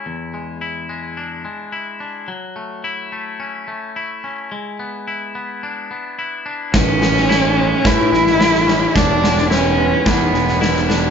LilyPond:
<<
  \new Staff \with { instrumentName = "Vibraphone" } { \time 4/4 \key a \major \tempo 4 = 108 r1 | r1 | r1 | b'4 a'8 a'8 b'4 a'8 cis''8 |
cis''4 b'8 b'8 cis''4 b'8 d''8 | }
  \new Staff \with { instrumentName = "Cello" } { \time 4/4 \key a \major r1 | r1 | r1 | cis'2 e'2 |
d'4 cis'4 b4. r8 | }
  \new Staff \with { instrumentName = "Clean electric guitar" } { \time 4/4 \key a \major e,8 gis8 e'8 gis8 d'8 gis8 e'8 d'8 | fis8 a8 e'8 a8 cis'8 a8 e'8 cis'8 | gis8 b8 e'8 b8 d'8 b8 e'8 d'8 | a,8 gis8 e'8 gis8 cis'8 gis8 e'8 cis'8 |
e,8 gis8 e'8 gis8 d'8 gis8 e'8 d'8 | }
  \new Staff \with { instrumentName = "Fingered electric bass" } { \clef bass \time 4/4 \key a \major r1 | r1 | r1 | a,,2 a,8 a,,4. |
e,,2 e,8 e,,4. | }
  \new DrumStaff \with { instrumentName = "Drums" } \drummode { \time 4/4 r4 r4 r4 r4 | r4 r4 r4 r4 | r4 r4 r4 r4 | <bd sn>8 sn16 sn16 sn4 <bd sn>8 sn16 sn16 sn16 sn16 sn8 |
<bd sn>8 sn16 sn16 sn4 <bd sn>8 sn16 sn16 sn16 sn16 sn8 | }
>>